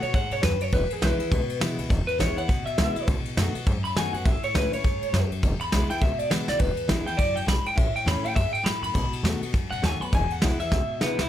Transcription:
Already playing: B2
0.02 B3 F#4 C#5, muted upright bass stroke, ride
0.14 G#2 F#5, kick, ride
0.31 B2 C#5, ride
0.43 D#2 F#2 B4, snare, ride
0.61 C#5, muted upright bass stroke, ride
0.72 E1 E2 B4, kick, ride
0.90 G#4, ride
1.02 B1 E3 G#3 B3 E4 B4, snare, ride
1.19 B3 E4, ride
1.32 C#2 B2, kick, ride
1.50 ride
1.60 C#2 E3 G#3 B3 E4, snare, ride
1.77 C#2 B3 E4, ride
1.89 E1 E2, kick, ride
2.07 B4, ride
2.18 A1 E3 G#3 B3 E4 C#5, snare, ride
2.37 B3 E4 F#5, muted upright bass stroke, ride
2.48 C#2 B2, kick, ride
2.66 E2 E5, ride
2.78 C#2 E3 G#3 B3 E4, snare, ride
2.95 B3 E4, muted upright bass stroke, ride
3.07 B1 B2, kick, ride
3.25 muted upright bass stroke, ride
3.37 F#2 D#3 A3 B3 F#4, snare, ride
3.54 B3 F#4, muted upright bass stroke, ride
3.66 F#2 G#2, kick, ride
3.84 B5, muted upright bass stroke, ride
3.96 A2 D#3 A3 B3 F#4 G#5, snare, ride
4.13 G#2 B3 F#4 F#5, ride
4.25 A1 A2 E5, kick, ride
4.42 C#5, muted upright bass stroke, ride
4.54 C#2 E3 A3 C#4 E4 B4, snare, ride
4.73 C#4 E4 C#5, ride
4.84 F#2 G#2, kick, ride
5.02 A2, ride
5.13 F#2, snare, ride
5.31 muted upright bass stroke, ride
5.43 E1 E2, kick, ride
5.60 B5, muted upright bass stroke, ride
5.72 B1 E3 G#3 B3 E4, snare, ride
5.90 B3 E4 G5, ride
6.01 C#2 B2 E5, kick, ride
6.19 D5, muted upright bass stroke, ride
6.30 C#2 E3 G#3 B3 E4 E5, snare, ride
6.48 C#2 B3 E4 D5, snare
6.59 E1 E2 B4, kick, ride
6.77 ride
6.88 A1 E3 G#3 B3 E4, snare, ride
7.05 B3 E4 G5, muted upright bass stroke, ride
7.17 C#2 F#2 D5, kick, ride
7.36 E2 G5, ride
7.46 B1 G#2 B5, snare, ride
7.66 G5, muted upright bass stroke, ride
7.76 A1 A2 E5, kick, ride
7.94 G5, muted upright bass stroke, ride
8.05 E2 E3 A3 C#4 E4 B5, snare, ride
8.23 C#4 E4 G5, muted upright bass stroke, ride
8.34 F#2 G#2 E5, kick, ride
8.53 G5, muted upright bass stroke, ride
8.63 F#2 A2 B5, snare, ride
8.82 F#2 B5, ride
8.94 B1 B2, kick, ride
9.13 ride
9.23 E2 D#3 A3 B3 F#4, snare, ride
9.41 B3 F#4, muted upright bass stroke, ride
9.53 F#2 G#2, kick, ride
9.71 B2 F#5, ride
9.82 D#2 D#3 A3 B3 F#4 G#5, snare, ride
10.00 B3 F#4 B5, muted upright bass stroke, ride
10.13 E1 E2 G#5, kick, ride
10.30 F#5, ride
10.42 B1 E3 G#3 B3 E4, snare, ride
10.59 B3 E4 E5, muted upright bass stroke, ride
10.72 C#2 B2, kick, snare
11.00 C#2 E3 G#3 B3 E4, snare
11.18 C#2 B3 E4, snare

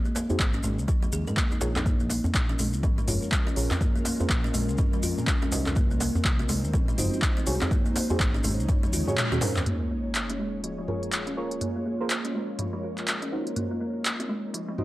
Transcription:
Already playing: D#4 F#4 G#4 C#5
0.05 A#3, maracas
0.15 A#3, djembe slap, maracas
0.29 D#4 F#4 G#4 C5, djembe bass, maracas
0.40 G#1, kick, clap, maracas
0.53 C#4, maracas
0.63 G#1 G#3, djembe tone, maracas
0.78 C#2, maracas
0.88 F3, kick, maracas
1.02 F3, djembe tone, maracas
1.12 D#2 G#4, maracas
1.27 G#2 A#4, djembe tone, maracas
1.37 A#3, kick, clap, maracas
1.51 D#4, djembe tone, maracas
1.61 A#1 F4 G#4 A#4 C#5, djembe slap, maracas
1.76 D#4, clap, djembe tone, maracas
1.85 G#3 A#3 C#4 F4 A#4, kick, mid tom, maracas
2.00 A#3, maracas
2.10 A#3, open hi-hat, djembe slap, maracas
2.24 djembe bass, maracas
2.35 A#1, kick, clap, maracas
2.49 C#4, maracas
2.59 A#1 G#3, open hi-hat, djembe tone, maracas
2.73 C#2, maracas
2.83 G#1 F3, kick, djembe tone, maracas
2.98 F3, maracas
3.07 F1 F4 G#4 A#4 C#5, mid tom, open hi-hat, djembe tone, maracas
3.22 maracas
3.32 kick, clap, maracas
3.47 C#4, maracas
3.56 A#1 F4 G#4 A#4 C#5, open hi-hat, maracas
3.71 clap, djembe slap, djembe bass, maracas
3.81 A#3, kick, mid tom, maracas
3.96 A#3, maracas
4.05 A#3, open hi-hat, djembe slap, maracas
4.20 F4 G#4 A#4 C5, djembe bass, maracas
4.30 A#1, kick, clap, maracas
4.44 C#4, maracas
4.54 A#1 G#3, open hi-hat, djembe tone, maracas
4.69 C#2, maracas
4.78 F3, kick, mid tom, maracas
4.93 F3, maracas
5.03 F2 F4, open hi-hat, maracas
5.18 A#2, djembe tone, maracas
5.27 kick, clap, maracas
5.42 C#4, djembe tone, maracas
5.52 C2 D#4 F#4 C5 D#5, open hi-hat, djembe slap, maracas
5.66 clap, djembe tone, maracas
5.76 A#3 C4 D#4 C5, kick, mid tom, maracas
5.91 A#3, maracas
6.00 A#3, open hi-hat, djembe slap, maracas
6.15 djembe bass, maracas
6.25 C2, kick, clap, maracas
6.39 C4, maracas
6.49 C2 G#3, open hi-hat, djembe tone, maracas
6.64 D#2, maracas
6.73 A#1 F3, kick, djembe tone, maracas
6.88 F3, maracas
6.98 F#1 D#4 F4 F#4 C5 D#5, mid tom, open hi-hat, djembe tone, maracas
7.13 maracas
7.22 kick, clap, maracas
7.37 C4, maracas
7.46 C2 D#4 F#4 G#4 C#5, open hi-hat, maracas
7.61 clap, djembe slap, djembe bass, maracas
7.71 G#3 A#3 C#5, kick, mid tom, maracas
7.86 A#3, maracas
7.96 A#3, open hi-hat, djembe slap, maracas
8.10 D#4 F#4 G#4 C5, djembe bass, maracas
8.20 G#1, kick, clap, maracas
8.34 C#4, maracas
8.43 G#1 G#3, open hi-hat, djembe tone, maracas
8.59 C#2, maracas
8.69 F3, kick, mid tom, maracas
8.83 F3, djembe tone, maracas
8.93 D#2 F4, open hi-hat, high tom, maracas
9.07 G#2 D#4 F#4 G#4 C#5, djembe tone, maracas
9.17 clap, mid tom, maracas
9.32 D#2 C#4 D#4 F#4 G#4 C#5, mid tom, djembe tone, maracas
9.41 G#2 F4 G#4 A#4 C5, mid tom, open hi-hat, djembe slap, maracas
9.56 D#2, clap, mid tom, djembe tone, maracas
9.66 A#3 F4 G#4 C#5, closed hi-hat, mid tom, sub drop
9.81 A#3
9.91 A#3
10.15 clap, closed hi-hat
10.30 C#4, closed hi-hat
10.39 G#3
10.64 F3, closed hi-hat
10.78 F3
10.88 F4 G#4 A#4 C#5, mid tom
11.03 closed hi-hat
11.12 clap, closed hi-hat
11.27 C#4, closed hi-hat
11.37 F4 G#4 A#4 C#5
11.51 closed hi-hat
11.61 A#3 A#4, closed hi-hat, mid tom
11.76 A#3
11.86 A#3
12.00 F4 G#4 A#4 C5
12.10 clap, closed hi-hat
12.25 C#4, closed hi-hat
12.34 G#3
12.59 F3, closed hi-hat, mid tom
12.73 F3
12.83 F4
12.98 clap, closed hi-hat
13.08 clap, closed hi-hat
13.22 C#4, closed hi-hat
13.32 D#4 F#4 C5 D#5
13.47 closed hi-hat
13.56 A#3 C4 D#4 D#5, closed hi-hat, mid tom
13.71 A#3
13.81 A#3
14.05 clap, closed hi-hat
14.20 C4, closed hi-hat
14.29 G#3
14.54 F3, closed hi-hat
14.68 F3
14.78 D#4 F4 F#4 C5 D#5, mid tom

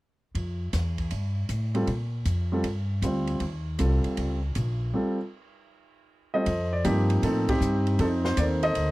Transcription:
0.35 F2, ride
0.73 E2, snare, hi-hat pedal, ride
0.98 kick, ride
1.11 G2, ride
1.49 A2, hi-hat pedal, ride
1.74 G3 C4 F4 A4, ride
1.87 A#2, ride
2.25 F2, hi-hat pedal, ride
2.52 G3 C4 F4 A4
2.64 G2, ride
3.02 D2 G3 C4 F4 C5, hi-hat pedal, ride
3.27 ride
3.40 D#2, ride
3.78 C2 G3 C4 F4 A4, hi-hat pedal, ride
4.04 muted upright bass stroke, ride
4.17 C#2, ride
4.55 A#1, hi-hat pedal, ride
4.94 G3 C4 F4 A4
6.34 G3 C4 F4 A4 C5 D#5
6.46 F2, ride
6.73 D5
6.85 G2 F3 A#3 C4 D#4 G4, hi-hat pedal, ride
7.10 ride
7.23 A2 C4 D#4 A4, ride
7.49 C4 D#4 G4, kick, ride
7.61 G2, hi-hat pedal
7.87 ride
7.99 F2 C4 D#4 A4, ride
8.24 C5, snare
8.37 D#2 A#3 D#4 A4 C5 D5, hi-hat pedal, ride
8.63 A4 C5 D#5, ride
8.75 D2, ride

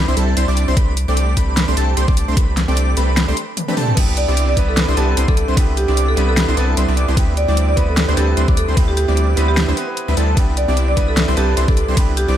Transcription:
0.08 C2 G3 C4 D4 E4 C5 C6
0.17 C2 G3 C4 D4 E4 A4 A5, closed hi-hat
0.37 C2 G3 C4 D4 E4 C5 C6, closed hi-hat
0.48 C2 G3 C4 D4 E4 D5 D6
0.57 closed hi-hat
0.68 C2 G3 C4 D4 E4 C5 C6
0.77 C2 B5, kick, closed hi-hat
0.97 closed hi-hat
1.08 C2 A3 C4 D4 G4 D5 D6
1.17 closed hi-hat
1.37 C2 A3 C4 D4 G4 B4 B5, kick, closed hi-hat
1.57 snare, closed hi-hat
1.68 C2 A3 C4 D4 G4 C5 C6
1.77 C2 A3 C4 D4 G4 A4 A5, closed hi-hat
1.97 C2 A3 C4 D4 G4 C5 C6, closed hi-hat
2.08 C2 D4 G4 D5 D6, kick
2.17 closed hi-hat
2.28 C2 A3 C4 D4 G4 C5 C6
2.37 C2 A3 C4 D4 G4 B4 B5, kick, closed hi-hat
2.57 snare, closed hi-hat
2.68 C2 A3 C4 D4 G4 D5 D6
2.77 closed hi-hat
2.97 C2 A3 C4 D4 G4 B4 B5, closed hi-hat
3.17 snare, closed hi-hat
3.28 C2 A3 C4 D4 G4 C5 C6
3.37 closed hi-hat
3.57 closed hi-hat, high tom
3.68 A3 C4 D4 G4 B4 B5, high tom
3.77 A3 C4 D4 G4 A4 A5, open hi-hat, mid tom
3.88 mid tom
3.95 C2 G3 B3 C4 D4 E4 B4 B5, kick, closed hi-hat, ride, crash
3.99 G4
4.17 D5, closed hi-hat
4.28 C2 G3 C4 D4 E4 D5 D6
4.37 closed hi-hat
4.49 D5
4.56 C2 G3 B3 C4 D4 E4 B4 B5, kick, closed hi-hat
4.69 A4
4.77 snare, closed hi-hat
4.88 C2 G3 C4 D4 E4 C5 C6
4.96 C2 G3 B3 C4 D4 E4 G4 A4 B4 A5, closed hi-hat
5.06 B3 D4 E4 B4
5.17 C2 G3 C4 D4 E4 C5 C6, closed hi-hat
5.28 C2 C4 A4 D6, kick
5.37 A4, closed hi-hat
5.48 C2 G3 C4 D4 E4 C5 C6
5.55 C2 G3 B3 C4 D4 E4 G4 B4 B5, kick, closed hi-hat, ride
5.77 G4, closed hi-hat
5.88 C2 G3 C4 D4 E4 D5 D6
5.97 closed hi-hat
6.09 A4
6.16 C2 G3 B3 C4 D4 E4 B4 B5, closed hi-hat
6.29 A4
6.37 snare, closed hi-hat
6.48 C2 G3 C4 D4 E4 C5 C6
6.56 C2 G3 B3 C4 D4 E4 A4 B4 A5, closed hi-hat
6.66 B3 D4 E4
6.70 B4
6.77 C2 G3 C4 D4 E4 C5 C6, closed hi-hat
6.88 C2 G3 C4 D4 E4 D5 D6
6.97 closed hi-hat
7.08 C2 G3 C4 D4 E4 C5 C6
7.15 D2 G3 B3 C4 D4 E4 G4 B4 B5, kick, closed hi-hat, ride
7.37 D5, closed hi-hat
7.48 D2 G3 C4 D4 E4 D5 D6
7.57 closed hi-hat
7.69 D5
7.76 D2 G3 B3 C4 D4 E4 B4 B5, kick, closed hi-hat
7.89 A4
7.97 snare, closed hi-hat
8.08 D2 G3 C4 D4 E4 C5 C6
8.16 D2 G3 B3 C4 D4 E4 G4 A4 B4 A5, closed hi-hat
8.26 B3 C4 E4 B4
8.37 D2 G3 C4 D4 E4 C5 C6, closed hi-hat
8.48 D2 D6, kick
8.57 A4, closed hi-hat
8.68 D2 G3 C4 D4 E4 C5 C6
8.75 D2 B3 C4 D4 E4 G4 B4 B5, kick, closed hi-hat, ride
8.88 G4
8.97 G4, closed hi-hat
9.08 D2 G3 C4 D4 E4 G4 D5 D6
9.17 closed hi-hat
9.36 D2 G3 B3 C4 D4 E4 B4 B5, closed hi-hat
9.48 G4
9.57 snare, closed hi-hat
9.68 D2 G3 C4 D4 E4 C5 C6
9.76 B3 C4 E4 B4, closed hi-hat
9.86 B3 C4 E4
9.90 B4
9.97 closed hi-hat
10.08 D2 G3 C4 D4 E4 B4 B5
10.17 D2 G3 C4 D4 E4 A4 A5, closed hi-hat
10.35 C2 G3 B3 C4 D4 E4 B4 B5, kick, closed hi-hat, ride
10.39 G4
10.57 D5, closed hi-hat
10.68 C2 G3 C4 D4 E4 D5 D6
10.77 closed hi-hat
10.88 D5
10.96 C2 G3 B3 C4 D4 E4 B4 B5, kick, closed hi-hat
11.08 A4
11.17 snare, closed hi-hat
11.28 C2 G3 C4 D4 E4 C5 C6
11.36 C2 G3 B3 C4 D4 E4 G4 A4 B4 A5, closed hi-hat
11.46 B3 D4 E4 B4
11.57 C2 G3 C4 D4 E4 C5 C6, closed hi-hat
11.68 C2 G3 D4 E4 A4 D5 D6, kick
11.77 A4, closed hi-hat
11.88 C2 G3 C4 D4 E4 C5 C6
11.95 C2 B3 D4 E4 G4 B5, kick, closed hi-hat, ride
12.17 G4, closed hi-hat
12.28 C2 G3 C4 D4 E4 D5 D6

